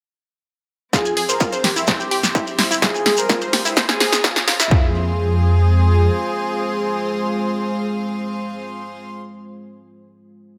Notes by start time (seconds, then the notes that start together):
0.93 C4 F4 G#4 C5, kick, snare, shekere
1.05 F2 G#5, shekere
1.17 F2 G#4, open hi-hat
1.29 F2 A#4 C5 F5, shekere
1.35 C6
1.40 F4, kick, shekere
1.52 F2 C5, shekere
1.64 F2 G4, snare, open hi-hat
1.76 F2 E4, shekere
1.87 C5, kick, snare, shekere
1.99 C2 G4 G5, shekere
2.11 C2 G4, open hi-hat
2.23 C2, snare, shekere
2.30 E5
2.35 E4, kick, shekere
2.47 G1, shekere
2.59 G1 E4, snare, open hi-hat
2.71 G1 E4, shekere
2.82 F4 G#4, kick, snare, shekere
2.94 F2 G#5, shekere
3.06 F2 G#4, snare, open hi-hat
3.17 F2 G#4 A#4 C5, shekere
3.25 F5
3.29 F4, kick, snare, shekere
3.41 G2 C5, shekere
3.53 G2 G4, snare, open hi-hat
3.65 G2 E4, shekere
3.77 C#4 C5, kick, snare, open hi-hat, shekere
3.89 C#2 G#4 G#5, snare, shekere
4.00 C#2 G#4, snare, open hi-hat
4.12 C#2, snare, shekere
4.19 A#5
4.24 F4, kick, snare, shekere
4.36 snare, shekere
4.48 G#1 F4, snare, open hi-hat
4.60 G#1 E4, snare, shekere
4.71 F2 G#3 C4 F4 G#4 C5, kick
4.78 G#4
4.86 F5
4.93 C6